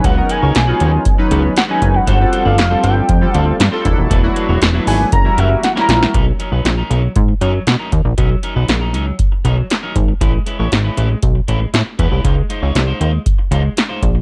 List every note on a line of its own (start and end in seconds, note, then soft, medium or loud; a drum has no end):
0.00 2.05 D#3 medium
0.00 2.03 F#3 medium
0.00 2.05 G#3 medium
0.00 2.04 B3 medium
0.00 0.24 B3 medium
0.00 2.03 C#4 medium
0.04 0.22 C#2 loud
0.04 0.17 D#4 medium
0.04 0.16 F#4 medium
0.04 0.16 B4 loud
0.04 0.32 F#5 loud
0.04 kick loud
0.04 closed hi-hat medium
0.17 0.52 F#3 medium
0.17 0.52 C#4 medium
0.17 0.52 D#4 medium
0.17 0.52 A#4 medium
0.17 muted clean electric guitar stroke soft
0.29 0.42 B3 medium
0.29 0.42 D#4 medium
0.29 0.41 F#4 medium
0.29 0.42 B4 medium
0.29 0.43 G#5 medium
0.29 closed hi-hat medium
0.42 0.52 C#2 medium
0.42 0.54 B3 medium
0.42 0.54 D#4 medium
0.42 0.54 F#4 medium
0.42 0.55 C#5 medium
0.42 1.15 G#5 loud
0.55 0.74 B1 medium
0.55 muted clean electric guitar stroke soft
0.55 snare loud
0.55 clap loud
0.55 closed hi-hat medium
0.67 1.03 F#3 medium
0.67 0.79 B3 medium
0.67 1.03 C#4 medium
0.67 0.79 D#4 medium
0.67 1.03 D#4 medium
0.67 1.03 F4 medium
0.67 0.79 F#4 medium
0.67 0.80 B4 medium
0.80 0.99 D#2 loud
0.80 1.00 B3 medium
0.80 0.92 D#4 medium
0.80 0.92 F#4 medium
0.80 0.92 B4 medium
0.80 closed hi-hat medium
0.93 muted clean electric guitar stroke medium
1.05 kick loud
1.05 closed hi-hat medium
1.18 1.54 F#3 loud
1.18 1.54 C#4 loud
1.18 1.54 D#4 medium
1.18 1.54 B4 loud
1.18 muted clean electric guitar stroke soft
1.31 1.49 C#2 medium
1.31 1.52 B3 medium
1.31 1.43 D#4 loud
1.31 1.43 F#4 loud
1.31 1.43 B4 loud
1.31 closed hi-hat medium
1.44 muted clean electric guitar stroke medium
1.56 1.63 F#5 loud
1.56 muted clean electric guitar stroke soft
1.56 snare loud
1.56 clap medium
1.56 closed hi-hat medium
1.69 2.04 F#3 medium
1.69 1.81 B3 medium
1.69 2.05 C#4 medium
1.69 2.05 D#4 medium
1.69 1.81 D#4 medium
1.69 1.81 F#4 medium
1.69 1.81 B4 medium
1.69 2.05 B4 loud
1.69 1.97 G#5 loud
1.82 2.00 F#1 medium
1.82 kick medium
1.82 closed hi-hat medium
1.94 2.48 F#5 loud
1.94 muted clean electric guitar stroke medium
2.07 2.26 G1 loud
2.07 3.84 F3 medium
2.07 5.10 A3 medium
2.07 2.28 C4 medium
2.07 3.84 C4 medium
2.07 5.10 D4 medium
2.07 2.19 F4 medium
2.07 3.84 G4 medium
2.07 2.19 A4 medium
2.07 2.19 C5 medium
2.07 kick loud
2.07 closed hi-hat medium
2.20 2.55 G3 medium
2.20 2.55 C4 medium
2.20 2.56 F4 medium
2.20 2.56 A4 medium
2.20 muted clean electric guitar stroke soft
2.32 2.45 C4 medium
2.32 2.44 F4 medium
2.32 2.44 A4 medium
2.32 2.45 C5 medium
2.32 closed hi-hat medium
2.45 2.60 G1 loud
2.45 2.56 C4 medium
2.45 2.57 F4 medium
2.45 2.57 A4 medium
2.45 2.58 D5 medium
2.45 2.83 F5 loud
2.58 2.77 F1 medium
2.58 muted clean electric guitar stroke soft
2.58 snare loud
2.58 clap loud
2.58 closed hi-hat medium
2.70 3.06 G3 medium
2.70 3.06 C4 medium
2.70 2.82 C4 medium
2.70 3.06 F4 medium
2.70 2.82 F4 medium
2.70 2.82 A4 medium
2.70 3.06 A4 medium
2.70 2.83 C5 medium
2.83 3.02 G1 medium
2.83 3.04 C4 medium
2.83 2.96 F4 medium
2.83 2.95 A4 medium
2.83 2.95 C5 medium
2.83 3.37 G5 loud
2.83 closed hi-hat medium
2.96 muted clean electric guitar stroke medium
3.09 3.27 F2 medium
3.09 kick loud
3.09 closed hi-hat medium
3.21 3.57 G3 medium
3.21 3.57 C4 medium
3.21 3.57 F4 medium
3.21 3.57 A4 loud
3.21 muted clean electric guitar stroke medium
3.34 3.53 D2 medium
3.34 3.55 C4 medium
3.34 3.46 F4 medium
3.34 3.46 A4 medium
3.34 3.46 C5 medium
3.34 3.56 F5 loud
3.34 closed hi-hat medium
3.47 muted clean electric guitar stroke medium
3.60 3.69 G2 medium
3.60 muted clean electric guitar stroke soft
3.60 snare loud
3.60 clap medium
3.60 closed hi-hat loud
3.72 3.85 G3 loud
3.72 3.85 C4 loud
3.72 3.85 C4 medium
3.72 3.85 F4 medium
3.72 3.85 A4 medium
3.72 3.84 A4 loud
3.72 3.85 C5 medium
3.85 3.95 E1 loud
3.85 5.11 E3 medium
3.85 4.16 F#3 loud
3.85 5.12 B3 medium
3.85 4.16 D4 medium
3.85 4.16 E4 medium
3.85 6.12 F#4 medium
3.85 4.16 A4 loud
3.85 muted clean electric guitar stroke soft
3.85 kick medium
3.85 closed hi-hat medium
3.98 4.07 D#1 loud
3.98 muted clean electric guitar stroke soft
4.10 4.29 E1 loud
4.10 4.31 A3 medium
4.10 4.23 D4 medium
4.10 4.22 F#4 medium
4.10 4.22 B4 medium
4.10 kick loud
4.10 closed hi-hat loud
4.23 4.59 F#3 loud
4.23 4.59 D4 loud
4.23 4.59 E4 medium
4.23 4.59 F#4 loud
4.23 muted clean electric guitar stroke soft
4.36 4.49 A3 medium
4.36 4.48 D4 medium
4.36 4.48 F#4 medium
4.36 4.48 B4 medium
4.36 closed hi-hat medium
4.49 4.58 E1 loud
4.49 4.60 A3 medium
4.49 4.61 D4 medium
4.49 4.61 F#4 medium
4.49 4.62 C#5 medium
4.61 4.80 E1 loud
4.61 muted clean electric guitar stroke soft
4.61 snare loud
4.61 clap medium
4.61 closed hi-hat medium
4.74 5.09 F#3 medium
4.74 4.86 A3 medium
4.74 5.10 D4 medium
4.74 4.86 D4 medium
4.74 5.10 E4 medium
4.74 4.86 F#4 medium
4.74 4.87 B4 medium
4.74 5.10 B4 loud
4.87 5.05 G#1 medium
4.87 5.07 A3 medium
4.87 4.99 D4 medium
4.87 4.99 F#4 loud
4.87 4.98 B4 medium
4.87 5.11 G#5 loud
4.87 open hi-hat medium
4.99 muted clean electric guitar stroke soft
5.12 5.31 F#1 medium
5.12 6.13 E3 medium
5.12 6.13 G3 medium
5.12 6.13 A#3 medium
5.12 6.13 C#4 medium
5.12 5.41 A#5 loud
5.12 kick loud
5.12 closed hi-hat medium
5.25 5.60 G3 medium
5.25 5.60 E4 medium
5.25 5.61 F#4 medium
5.25 5.61 A#4 medium
5.25 muted clean electric guitar stroke soft
5.38 5.56 F#1 loud
5.38 5.58 G3 medium
5.38 5.50 C#4 medium
5.38 5.50 E4 medium
5.38 5.49 A#4 loud
5.38 5.64 E5 loud
5.38 closed hi-hat medium
5.50 muted clean electric guitar stroke medium
5.63 5.72 F#5 medium
5.63 muted clean electric guitar stroke soft
5.63 snare medium
5.63 closed hi-hat loud
5.75 6.11 G3 medium
5.75 5.87 G3 medium
5.75 5.87 C#4 medium
5.75 6.11 E4 medium
5.75 5.88 E4 medium
5.75 6.11 F#4 medium
5.75 5.88 A#4 medium
5.75 6.12 A#4 loud
5.75 snare medium
5.81 6.12 A#5 medium
5.88 6.07 A#1 medium
5.88 muted clean electric guitar stroke soft
5.88 snare medium
5.88 closed hi-hat medium
6.03 snare medium
6.14 6.32 B1 loud
6.14 6.34 F#3 medium
6.14 6.26 C#4 medium
6.14 6.26 D#4 medium
6.14 6.25 A#4 medium
6.14 kick loud
6.14 closed hi-hat medium
6.27 muted clean electric guitar stroke soft
6.39 6.52 F#3 medium
6.39 6.52 C#4 medium
6.39 6.51 D#4 medium
6.39 6.52 A#4 medium
6.39 closed hi-hat medium
6.52 6.61 B1 medium
6.52 6.64 F#3 soft
6.52 6.64 C#4 soft
6.52 6.64 D#4 soft
6.52 6.65 B4 medium
6.65 6.83 A#1 medium
6.65 muted clean electric guitar stroke soft
6.65 snare loud
6.65 clap medium
6.65 closed hi-hat medium
6.78 6.89 F#3 soft
6.78 6.90 C#4 medium
6.78 6.90 D#4 medium
6.78 6.90 A#4 medium
6.90 7.09 B1 medium
6.90 7.11 F#3 medium
6.90 7.03 C#4 medium
6.90 7.02 D#4 medium
6.90 7.02 A#4 medium
6.90 closed hi-hat medium
7.03 muted clean electric guitar stroke soft
7.16 7.34 G#2 medium
7.16 kick loud
7.16 closed hi-hat medium
7.28 muted clean electric guitar stroke soft
7.41 7.59 F#2 medium
7.41 7.62 F#3 medium
7.41 7.54 C#4 medium
7.41 7.53 D#4 loud
7.41 7.53 A#4 medium
7.41 closed hi-hat medium
7.54 muted clean electric guitar stroke soft
7.67 7.76 B2 loud
7.67 muted clean electric guitar stroke soft
7.67 snare loud
7.67 clap medium
7.67 closed hi-hat medium
7.79 7.91 F#3 medium
7.79 7.91 C#4 medium
7.79 7.92 D#4 medium
7.79 7.92 A#4 medium
7.92 8.01 D#2 medium
7.92 muted clean electric guitar stroke soft
7.92 kick medium
7.92 closed hi-hat medium
8.05 8.14 A#1 medium
8.05 muted clean electric guitar stroke soft
8.18 8.36 B1 loud
8.18 8.38 F#3 medium
8.18 8.30 C#4 medium
8.18 8.30 D#4 medium
8.18 8.29 A#4 medium
8.18 kick loud
8.18 closed hi-hat medium
8.30 muted clean electric guitar stroke soft
8.43 8.55 F#3 medium
8.43 8.55 C#4 medium
8.43 8.55 D#4 medium
8.43 8.55 A#4 medium
8.43 closed hi-hat medium
8.56 8.65 B1 medium
8.56 8.67 F#3 soft
8.56 8.68 C#4 medium
8.56 8.68 D#4 medium
8.56 8.69 B4 medium
8.68 8.96 A#1 medium
8.68 snare loud
8.68 clap medium
8.68 closed hi-hat medium
8.81 8.92 F#3 medium
8.81 8.93 C#4 medium
8.81 8.93 D#4 medium
8.81 8.94 A#4 medium
8.94 9.12 C#2 medium
8.94 9.14 F#3 medium
8.94 9.06 C#4 medium
8.94 9.06 D#4 medium
8.94 9.06 A#4 medium
8.94 closed hi-hat medium
9.07 muted clean electric guitar stroke soft
9.19 kick loud
9.19 closed hi-hat medium
9.32 muted clean electric guitar stroke soft
9.45 9.63 B1 medium
9.45 9.65 F#3 medium
9.45 9.57 C#4 medium
9.45 9.57 D#4 medium
9.45 9.56 A#4 medium
9.45 closed hi-hat medium
9.58 muted clean electric guitar stroke medium
9.70 muted clean electric guitar stroke soft
9.70 snare medium
9.70 clap medium
9.70 closed hi-hat medium
9.83 9.94 F#3 medium
9.83 9.95 C#4 medium
9.83 9.95 D#4 medium
9.83 9.95 A#4 medium
9.96 10.14 G#1 medium
9.96 muted clean electric guitar stroke soft
9.96 kick medium
9.96 closed hi-hat medium
10.08 muted clean electric guitar stroke medium
10.21 10.39 A1 loud
10.21 10.41 G#3 medium
10.21 10.33 C#4 medium
10.21 10.33 E4 medium
10.21 10.32 B4 medium
10.21 kick loud
10.21 closed hi-hat medium
10.34 muted clean electric guitar stroke soft
10.46 10.59 G#3 medium
10.46 10.58 C#4 medium
10.46 10.58 E4 medium
10.46 10.59 B4 medium
10.46 closed hi-hat medium
10.59 10.69 A1 loud
10.59 10.71 G#3 soft
10.59 10.71 C#4 medium
10.59 10.71 E4 medium
10.59 10.72 C#5 medium
10.72 10.90 G#1 medium
10.72 muted clean electric guitar stroke soft
10.72 snare loud
10.72 clap medium
10.72 closed hi-hat medium
10.84 10.96 G#3 medium
10.84 10.96 C#4 medium
10.84 10.96 E4 medium
10.84 10.97 B4 medium
10.97 11.16 A1 medium
10.97 11.17 G#3 medium
10.97 11.09 C#4 medium
10.97 11.09 E4 medium
10.97 11.09 B4 medium
10.97 closed hi-hat medium
11.10 muted clean electric guitar stroke medium
11.23 11.41 B1 medium
11.23 kick loud
11.23 closed hi-hat medium
11.35 muted clean electric guitar stroke soft
11.48 11.66 A1 medium
11.48 11.68 G#3 medium
11.48 11.61 C#4 medium
11.48 11.60 E4 medium
11.48 11.60 B4 medium
11.48 closed hi-hat medium
11.61 muted clean electric guitar stroke soft
11.73 11.83 A2 medium
11.73 muted clean electric guitar stroke soft
11.73 snare medium
11.73 clap medium
11.73 closed hi-hat medium
11.86 muted clean electric guitar stroke soft
11.99 12.08 E2 medium
11.99 12.11 G#3 medium
11.99 12.11 C#4 medium
11.99 12.11 E4 medium
11.99 12.10 B4 medium
11.99 kick medium
11.99 closed hi-hat medium
12.11 12.21 C2 medium
12.11 12.23 G#3 soft
12.11 12.24 C#4 medium
12.11 12.24 E4 medium
12.11 12.25 B4 medium
12.24 12.43 C#2 loud
12.24 12.45 G#3 medium
12.24 12.36 D#4 medium
12.24 12.36 F4 medium
12.24 12.36 C5 medium
12.24 kick loud
12.24 closed hi-hat medium
12.37 muted clean electric guitar stroke soft
12.49 12.62 G#3 medium
12.49 12.62 D#4 medium
12.49 12.61 F4 medium
12.49 12.62 C5 medium
12.49 closed hi-hat medium
12.62 12.72 C#2 medium
12.62 12.74 G#3 medium
12.62 12.74 D#4 medium
12.62 12.74 F4 medium
12.62 12.75 C#5 medium
12.75 12.93 C2 medium
12.75 muted clean electric guitar stroke soft
12.75 snare loud
12.75 clap medium
12.75 closed hi-hat medium
12.87 12.99 G#3 medium
12.87 12.99 D#4 medium
12.87 12.99 F4 medium
12.87 13.00 C5 medium
13.00 13.19 D#2 medium
13.00 13.21 G#3 medium
13.00 13.12 D#4 medium
13.00 13.12 F4 medium
13.00 13.12 C5 medium
13.00 closed hi-hat medium
13.13 muted clean electric guitar stroke soft
13.26 kick loud
13.26 closed hi-hat medium
13.38 muted clean electric guitar stroke soft
13.51 13.69 C#2 medium
13.51 13.72 G#3 medium
13.51 13.63 D#4 medium
13.51 13.63 F4 medium
13.51 13.63 C5 medium
13.51 closed hi-hat medium
13.64 muted clean electric guitar stroke soft
13.77 muted clean electric guitar stroke soft
13.77 snare medium
13.77 clap medium
13.77 closed hi-hat medium
13.89 14.01 G#3 medium
13.89 14.01 D#4 medium
13.89 14.02 F4 medium
13.89 14.02 C5 medium
14.02 14.21 A#1 medium
14.02 muted clean electric guitar stroke soft
14.02 kick medium
14.02 closed hi-hat medium
14.15 muted clean electric guitar stroke soft